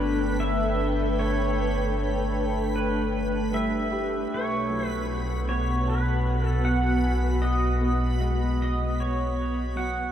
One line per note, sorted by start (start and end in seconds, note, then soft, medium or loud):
0.00 4.26 G1 medium
0.00 4.30 A3 medium
0.00 0.57 B3 medium
0.00 4.30 D4 medium
0.00 6.27 A4 medium
0.00 0.43 B4 medium
0.00 6.57 B4 medium
0.00 4.32 G5 medium
0.00 10.12 B5 medium
0.40 1.19 E5 medium
1.19 2.80 C#5 medium
2.76 3.55 B4 medium
3.52 4.85 G3 soft
3.52 4.34 E5 medium
3.92 4.85 G4 medium
4.31 10.12 B1 medium
4.31 10.12 B2 medium
4.31 4.87 C#5 medium
4.57 10.12 F#5 medium
4.70 6.41 F#3 soft
4.70 6.41 A4 medium
4.78 10.12 B3 medium
4.87 5.06 B4 medium
5.05 10.12 F#4 medium
5.49 5.88 C#5 medium
5.88 6.47 B4 medium
5.88 7.19 A5 medium
6.47 6.68 A4 medium
6.65 7.41 F#5 medium
7.04 8.36 G#5 medium
7.42 8.16 D#5 medium
7.81 8.55 B3 medium
8.21 9.92 G#3 medium
8.21 9.92 F#5 medium
8.62 9.01 D#5 medium
9.00 9.79 C#5 medium
9.76 10.12 F#3 medium
9.76 10.12 F#5 medium